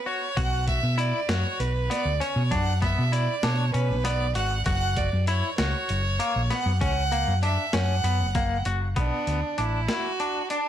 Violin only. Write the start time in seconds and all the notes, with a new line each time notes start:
0.07 C#5
0.37 F#5
0.68 E5
0.99 D5
1.30 C#5
1.60 B4
1.90 D5
2.20 C#5
2.51 F#5
2.82 E5
3.13 D5
3.43 C#5
3.74 B4
4.04 D5
4.35 F#5
4.66 F#5
4.97 D5
5.28 C#5
5.58 C#5
6.51 F#5
6.81 F#5
7.44 E5
7.75 F#5
8.97 D4
9.60 E4
9.90 F#4
10.51 D4